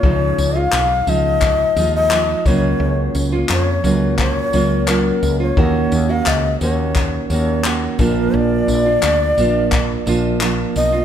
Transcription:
Already playing: shakuhachi C#5
0.03 fretless electric bass C#2, nylon-string guitar C#3 F3 G#3 D#4 F4, kick
0.38 fretless electric bass C#2, tambourine
0.55 nylon-string guitar G#3 D#4 F4, shakuhachi F5
0.72 fretless electric bass B1, clap
1.07 fretless electric bass C#2, nylon-string guitar F3 G#3 D#4 F4, shakuhachi D#5, tambourine
1.42 kick, clap
1.76 fretless electric bass D#2, nylon-string guitar F3 G#3 D#4 F4, tambourine
1.96 shakuhachi D#5
2.11 nylon-string guitar F3 G#3 D#4 F4, clap
2.46 fretless electric bass C#2, nylon-string guitar C#3 F#3 A#3 C#4 F4, shakuhachi C#5, kick, tambourine
2.80 fretless electric bass C#2
3.15 fretless electric bass C#2, tambourine
3.32 nylon-string guitar A#3 C#4 F4
3.49 fretless electric bass F2, shakuhachi C5, clap
3.63 shakuhachi C#5
3.84 fretless electric bass C#2, nylon-string guitar F#3 A#3 C#4 F4, tambourine
4.19 shakuhachi C5, kick, clap
4.33 shakuhachi C#5
4.53 fretless electric bass C#2, nylon-string guitar F#3 A#3 C#4 F4, tambourine
4.87 nylon-string guitar F#3 A#3 C#4 F4, shakuhachi A#4, clap
5.23 fretless electric bass C#2, tambourine
5.40 nylon-string guitar A#3 C#4 F4, shakuhachi C#5
5.57 fretless electric bass D#2, nylon-string guitar D#3 A#3 C#4 F#4, kick
5.92 fretless electric bass D#2, tambourine
6.09 nylon-string guitar A#3 C#4 F#4, shakuhachi F5
6.26 fretless electric bass C#2, shakuhachi D#5, clap
6.61 fretless electric bass D#2, nylon-string guitar D#3 A#3 C#4 F#4, shakuhachi C#5, tambourine
6.96 kick, clap
7.30 fretless electric bass D#2, nylon-string guitar D#3 A#3 C#4 F#4, shakuhachi C#5, tambourine
7.64 nylon-string guitar D#3 A#3 C#4 F#4, clap
7.99 fretless electric bass A#1, nylon-string guitar A#2 F3 A#3 D4 F4, shakuhachi A#4, kick, tambourine
8.34 fretless electric bass A#1, shakuhachi D5
8.68 fretless electric bass A#1, tambourine
8.86 nylon-string guitar A#3 D4 F4
9.03 fretless electric bass D2, clap
9.37 fretless electric bass A#1, nylon-string guitar F3 A#3 D4 F4, tambourine
9.72 kick, clap
10.06 fretless electric bass A#1, nylon-string guitar F3 A#3 D4 F4, tambourine
10.41 nylon-string guitar F3 A#3 D4 F4, clap
10.76 fretless electric bass B1, shakuhachi D#5, tambourine
10.92 nylon-string guitar A#3 D4 F4

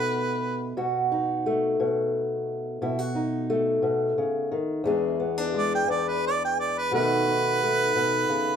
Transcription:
Already playing: steel-string acoustic guitar B2 A3 D#4 F#4, harmonica B4
0.77 steel-string acoustic guitar B2 F#4
1.12 steel-string acoustic guitar D#4
1.46 steel-string acoustic guitar A3
1.80 steel-string acoustic guitar B2
2.82 steel-string acoustic guitar B2 E4
2.99 steel-string acoustic guitar F#4
3.15 steel-string acoustic guitar D#4
3.50 steel-string acoustic guitar A3
3.82 steel-string acoustic guitar B2
4.18 steel-string acoustic guitar C#3
4.52 steel-string acoustic guitar D#3
4.84 steel-string acoustic guitar E2 E3 G#3 D4 G#4
5.20 steel-string acoustic guitar B3
5.38 steel-string acoustic guitar D4
5.54 steel-string acoustic guitar G#3, harmonica D5
5.75 harmonica G5
5.88 steel-string acoustic guitar E2, harmonica D5
6.09 harmonica B4
6.27 harmonica D5
6.45 harmonica G5
6.60 harmonica D5
6.78 harmonica B4
6.91 steel-string acoustic guitar B2 D#3 A3 D#4 F#4, harmonica B4
7.28 steel-string acoustic guitar D#4
7.63 steel-string acoustic guitar A3
7.96 steel-string acoustic guitar B2
8.29 steel-string acoustic guitar C#3

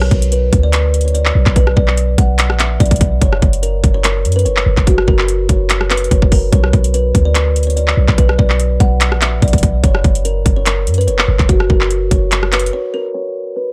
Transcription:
Already playing: 808-style bass B1, kalimba C#5
0.02 cross-stick
0.11 808-style bass B1, kick, closed hi-hat
0.22 closed hi-hat
0.32 kalimba B4, closed hi-hat
0.53 808-style bass D2, kick, closed hi-hat
0.63 kalimba D5
0.73 kalimba B4, clap, closed hi-hat
0.94 closed hi-hat
1.01 closed hi-hat
1.05 kalimba C#5, closed hi-hat
1.14 kalimba D5, closed hi-hat
1.25 clap
1.35 808-style bass B1
1.46 808-style bass B1, kick, clap
1.56 kalimba B4, kick, closed hi-hat
1.67 cross-stick
1.76 808-style bass B1, kalimba D5, kick
1.88 clap
1.97 closed hi-hat
2.18 808-style bass B1, kalimba F#5, kick, closed hi-hat
2.39 clap, closed hi-hat
2.50 808-style bass A#1, cross-stick
2.59 kalimba E5, clap, closed hi-hat
2.80 808-style bass B1, kalimba D5, kick, closed hi-hat
2.86 closed hi-hat
2.91 kick, closed hi-hat
2.96 closed hi-hat
3.01 kick, closed hi-hat
3.21 808-style bass F#1, kalimba C#5, kick, closed hi-hat
3.33 cross-stick
3.42 808-style bass F#1, kick, closed hi-hat
3.53 closed hi-hat
3.63 kalimba A#4, closed hi-hat
3.84 808-style bass F#1, kick, closed hi-hat
3.94 kalimba C#5
4.04 kalimba A#4, clap, closed hi-hat
4.25 808-style bass F#2, closed hi-hat
4.32 kalimba B4, closed hi-hat
4.39 closed hi-hat
4.45 808-style bass F#1, kalimba C#5, closed hi-hat
4.57 clap
4.66 808-style bass F#1
4.77 808-style bass F#1, kick, clap
4.87 kalimba F#4, kick, closed hi-hat
4.98 cross-stick
5.08 808-style bass F#1, kalimba A#4, kick
5.19 clap
5.28 closed hi-hat
5.49 808-style bass F#1, kalimba C#5, kick, closed hi-hat
5.70 clap, closed hi-hat
5.81 cross-stick
5.90 kalimba B4, clap, closed hi-hat
5.97 closed hi-hat
6.04 closed hi-hat
6.11 808-style bass F#1, kalimba C#5, kick, closed hi-hat
6.22 kick
6.32 kalimba A#4, kick, open hi-hat
6.52 808-style bass B1, kalimba C#5, kick, closed hi-hat
6.64 cross-stick
6.73 808-style bass B1, kick, closed hi-hat
6.84 closed hi-hat
6.94 kalimba B4, closed hi-hat
7.15 808-style bass D2, kick, closed hi-hat
7.25 kalimba D5
7.35 kalimba B4, clap, closed hi-hat
7.56 closed hi-hat
7.63 closed hi-hat
7.67 kalimba C#5, closed hi-hat
7.76 kalimba D5, closed hi-hat
7.88 clap
7.97 808-style bass B1
8.08 808-style bass B1, kick, clap
8.18 kalimba B4, kick, closed hi-hat
8.29 cross-stick
8.39 808-style bass B1, kalimba D5, kick
8.50 clap
8.60 closed hi-hat
8.80 808-style bass B1, kalimba F#5, kick, closed hi-hat
9.01 clap, closed hi-hat
9.12 808-style bass A#1, cross-stick
9.21 kalimba E5, clap, closed hi-hat
9.42 808-style bass B1, kalimba D5, kick, closed hi-hat
9.48 closed hi-hat
9.53 kick, closed hi-hat
9.58 closed hi-hat
9.63 kick, closed hi-hat
9.84 808-style bass F#1, kalimba C#5, kick, closed hi-hat
9.95 cross-stick
10.04 808-style bass F#1, kick, closed hi-hat
10.15 closed hi-hat
10.25 kalimba A#4, closed hi-hat
10.46 808-style bass F#1, kick, closed hi-hat
10.56 kalimba C#5
10.66 kalimba A#4, clap, closed hi-hat
10.87 808-style bass F#2, closed hi-hat
10.94 closed hi-hat
10.98 kalimba B4, closed hi-hat
11.08 808-style bass F#1, kalimba C#5, closed hi-hat
11.19 clap
11.28 808-style bass F#1
11.39 808-style bass F#1, kick, clap
11.49 808-style bass F#1, kalimba F#4, kick, closed hi-hat
11.60 cross-stick
11.70 808-style bass F#1, kalimba A#4, kick
11.81 clap
11.91 closed hi-hat
12.11 808-style bass F#1, kalimba C#5, kick, closed hi-hat
12.32 clap, closed hi-hat
12.43 cross-stick
12.52 kalimba B4, clap, closed hi-hat
12.59 closed hi-hat
12.66 closed hi-hat
12.73 kalimba C#5
12.94 kalimba A#4
13.14 kalimba C#5
13.56 kalimba B4

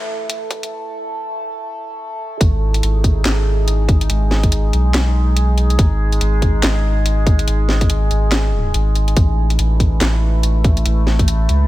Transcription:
Already playing: sub bass A1, synth drone A3 E4 A4
0.30 sub bass A1, closed hi-hat
0.51 kick, closed hi-hat
0.63 closed hi-hat
2.41 sub bass G#1, synth drone G#3 D#4 G#4, kick, closed hi-hat
2.74 closed hi-hat
2.83 sub bass G#1, closed hi-hat
3.04 kick, closed hi-hat
3.25 sub bass G#1, snare, clap, closed hi-hat
3.68 closed hi-hat
3.89 kick, closed hi-hat
4.01 closed hi-hat
4.10 sub bass G#1, closed hi-hat
4.31 snare
4.43 kick, closed hi-hat
4.52 closed hi-hat
4.73 sub bass B1, closed hi-hat
4.94 snare, clap, closed hi-hat
5.37 closed hi-hat
5.58 closed hi-hat
5.70 closed hi-hat
5.79 sub bass G#1, kick, closed hi-hat
6.12 closed hi-hat
6.21 sub bass G#1, closed hi-hat
6.42 kick, closed hi-hat
6.63 sub bass G#1, snare, clap, closed hi-hat
7.06 closed hi-hat
7.27 kick, closed hi-hat
7.39 closed hi-hat
7.48 sub bass G#1, closed hi-hat
7.69 snare
7.81 kick, closed hi-hat
7.90 closed hi-hat
8.11 sub bass G#1, closed hi-hat
8.32 snare, clap, closed hi-hat
8.74 sub bass G#1, closed hi-hat
8.95 closed hi-hat
9.08 closed hi-hat
9.17 sub bass A1, synth drone A3 E4 B4, kick, closed hi-hat
9.50 closed hi-hat
9.59 sub bass A1, closed hi-hat
9.80 kick, closed hi-hat
10.01 sub bass A1, snare, clap, closed hi-hat
10.43 closed hi-hat
10.64 kick, closed hi-hat
10.77 closed hi-hat
10.86 sub bass A1, closed hi-hat
11.07 snare
11.19 kick, closed hi-hat
11.28 closed hi-hat
11.49 sub bass C#2, closed hi-hat

